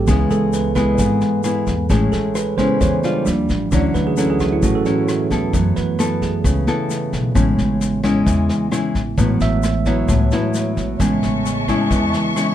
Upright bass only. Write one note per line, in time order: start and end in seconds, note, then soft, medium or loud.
0.08 0.29 C#2 medium
0.31 0.95 C#2 medium
0.99 1.20 G#1 medium
1.67 1.88 E2 medium
1.90 2.11 A1 loud
2.13 2.77 A1 medium
2.81 3.02 E2 medium
3.27 3.48 D#2 medium
3.49 3.70 A1 medium
3.72 3.93 D2 loud
3.94 4.58 D2 medium
4.63 4.84 A1 medium
5.31 5.52 D2 medium
5.54 5.75 F#2 medium
5.77 6.41 F#2 medium
6.44 6.66 C#2 medium
7.13 7.34 B1 medium
7.35 7.57 A1 loud
7.58 8.23 A1 medium
8.27 8.48 E2 medium
8.95 9.16 A1 medium
9.18 9.39 A1 loud
9.41 10.05 A1 medium
10.09 10.30 C#2 medium
10.77 10.98 A1 medium
11.00 11.21 A1 medium
11.23 11.87 A1 medium
11.91 12.12 E2 medium